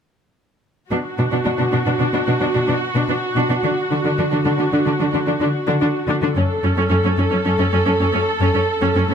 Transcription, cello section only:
0.91 B2
1.18 B2
1.32 B2
1.46 B2
1.59 B2
1.73 B2
1.86 B2
1.99 B2
2.13 B2
2.27 B2
2.41 B2
2.55 B2
2.68 B2
2.95 B2
3.09 B2
3.36 B2
3.50 B2
3.63 D3
3.90 D3
4.04 D3
4.18 D3
4.31 D3
4.45 D3
4.58 D3
4.72 D3
4.86 D3
5.00 D3
5.13 D3
5.27 D3
5.40 D3
5.68 D3
5.81 D3
6.08 D3
6.22 D3
6.35 F#2
6.63 F#2
6.76 F#2
6.90 F#2
7.04 F#2
7.17 F#2
7.31 F#2
7.45 F#2
7.58 F#2
7.72 F#2
7.86 F#2
7.99 F#2
8.13 F#2
8.40 F#2
8.54 F#2
8.81 F#2
8.95 F#2
9.08 A2

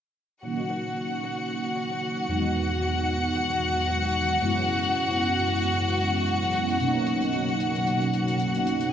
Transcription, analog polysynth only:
0.42 A#3 C#4 D#4 F#4
2.28 E2 G#3 B3 D#4 F#4
4.40 F#2 G#3 B3 C#4 E4
6.79 B2 F#3 A#3 C#4 D#4

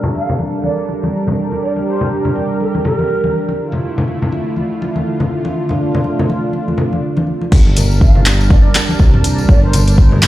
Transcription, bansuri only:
0.14 F5
0.64 D5
1.62 D5
1.87 C5
2.61 A#4
2.85 A#4
8.01 F5
8.51 D5
9.49 D5
9.63 C5
9.98 C5

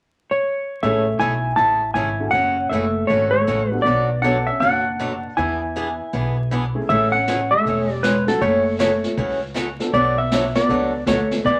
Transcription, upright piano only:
0.82 C#4 E4 G#4 A4
2.20 C#4 E4 F#4 A4
3.71 B3 D4 F#4 A4
4.24 B3 D4 F#4 A4
6.75 A3 C#4 E4 G#4
8.27 A3 C#4 E4 F#4
9.79 B3 D4 F#4 A4
10.68 B3 D4 F#4 A4

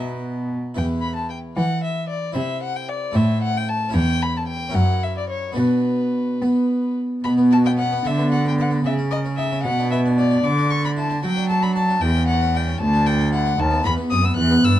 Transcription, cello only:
Already playing: B2
0.77 E2
1.57 E3
2.36 C3
3.15 A2
3.94 E2
4.75 F#2
5.57 B2
6.42 B3
7.25 B2
8.06 D3
8.85 C#3
9.65 B2
10.45 D3
11.25 F#3
12.02 E2
12.82 D2
13.59 D#2
13.86 E2
14.11 F#2
14.37 E2
14.63 G2

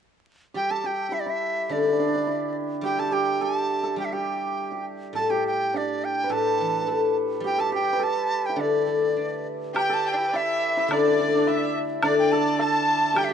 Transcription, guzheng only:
0.55 G3
1.69 D3
2.81 G3
3.96 G3
5.13 A2
6.29 A2
6.60 E3
6.87 A3
7.40 G3
8.56 D3
8.87 A3
9.17 D4
10.88 D3
11.19 A3
11.48 D4
12.02 D3
13.15 G3

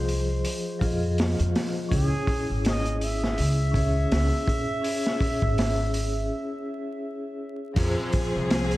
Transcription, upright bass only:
Already playing: C2
0.82 F2
1.40 F2
1.92 C#2
2.50 G#1
3.39 C#2
4.12 C#2
5.43 G#1
7.77 F2
8.36 C2

